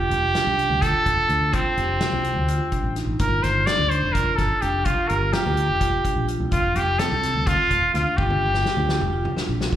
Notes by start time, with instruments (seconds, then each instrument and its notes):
Already playing: marimba F4, trumpet G4
0.10 fretless electric bass F1, closed hi-hat
0.34 marimba D4, snare, closed hi-hat
0.47 fretless electric bass C2
0.58 marimba D4, closed hi-hat
0.70 fretless electric bass D2
0.82 marimba F4, trumpet A4, kick, snare, closed hi-hat
1.06 fretless electric bass F1, kick, closed hi-hat
1.29 fretless electric bass D2, marimba D4, closed hi-hat
1.53 trumpet C4, marimba F4, kick, closed hi-hat
1.77 fretless electric bass F1, marimba G4, closed hi-hat
2.01 marimba F4, snare, closed hi-hat
2.13 fretless electric bass C2
2.24 closed hi-hat
2.36 fretless electric bass D2
2.48 marimba F4, closed hi-hat
2.72 marimba D4, kick, closed hi-hat
2.84 fretless electric bass A1
2.96 marimba D#4, snare, closed hi-hat
3.07 fretless electric bass A1
3.19 fretless electric bass G1, marimba F4, trumpet A#4, kick, closed hi-hat
3.43 fretless electric bass G1, trumpet C5, snare, closed hi-hat
3.66 marimba D4, trumpet D5, snare, closed hi-hat
3.79 fretless electric bass D2
3.90 marimba D4, trumpet C5, closed hi-hat
4.03 fretless electric bass F1
4.13 marimba F4, trumpet A#4, kick, closed hi-hat
4.36 fretless electric bass G1, trumpet A4, kick, snare, closed hi-hat
4.61 fretless electric bass F1, marimba D4, trumpet G4, closed hi-hat
4.85 trumpet F4, marimba F4, kick, closed hi-hat
5.08 fretless electric bass G1, marimba G4, trumpet A#4, closed hi-hat
5.33 marimba F4, trumpet G4, snare, closed hi-hat
5.46 fretless electric bass D2
5.57 closed hi-hat
5.69 fretless electric bass F1
5.80 marimba F4, kick, snare, closed hi-hat
6.04 marimba D4, kick, closed hi-hat
6.16 fretless electric bass A#1
6.28 marimba F4, closed hi-hat
6.40 fretless electric bass C2
6.51 fretless electric bass F1, marimba F4, trumpet F4, kick, closed hi-hat
6.75 fretless electric bass F1, trumpet G4, closed hi-hat
6.99 marimba C4, trumpet A4, snare, closed hi-hat
7.12 fretless electric bass C2
7.23 marimba C4, snare, closed hi-hat
7.35 fretless electric bass D2
7.47 marimba F4, trumpet F4, kick, closed hi-hat
7.71 fretless electric bass F1, kick, closed hi-hat
7.94 fretless electric bass D2, marimba D4, trumpet F4, snare, closed hi-hat
8.17 fretless electric bass G1, marimba F4, trumpet G4, kick
8.30 high tom
8.41 fretless electric bass G1, marimba G4
8.54 snare
8.66 marimba F4, snare
8.77 fretless electric bass D2
8.89 snare
9.01 fretless electric bass F1, mid tom
9.13 marimba F4
9.25 mid tom
9.37 marimba D4, snare
9.49 fretless electric bass A#1
9.60 marimba F4, snare
9.73 fretless electric bass C2, kick